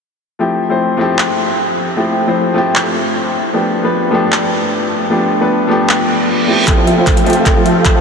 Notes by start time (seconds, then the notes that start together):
0.39 F3 A3 C4 E4 G4
0.69 F3 A3 C4 E4 C5
0.97 F3 A3 C4 E4
1.01 G4
1.19 clap
1.96 F3 A3 C4 E4 G4
2.26 F3 A3 C4 E4 C5
2.54 F3 A3 C4 E4 G4
2.75 clap
3.53 F3 A3 B3 D4 G4
3.83 F3 A3 B3 D4 B4
4.11 F3 A3 B3 D4
4.15 G4
4.32 clap
5.10 F3 A3 B3 D4 G4
5.40 F3 A3 B3 D4 B4
5.67 F3 A3 B3 D4 G4
5.89 clap, reverse cymbal
6.47 F3 A3 C4 E4 G4
6.67 F1 F3 A3 C4 F4 A4 E5 G5, kick, clap, closed hi-hat, riser
6.78 C5
6.87 E5, closed hi-hat
6.96 F3 A3 C4 E4 C5 F5
7.07 A4, kick, clap, closed hi-hat
7.17 C5, closed hi-hat
7.24 F3 A3 C4 E5, closed hi-hat
7.28 G4, closed hi-hat
7.33 F5, closed hi-hat
7.46 F1 F3 F4 A4 E5 G5, kick, clap, closed hi-hat
7.56 C5
7.66 E5, closed hi-hat
7.76 F5
7.85 A4, kick, clap, closed hi-hat
7.95 F1 F3 F4 A4 C5 E5 A5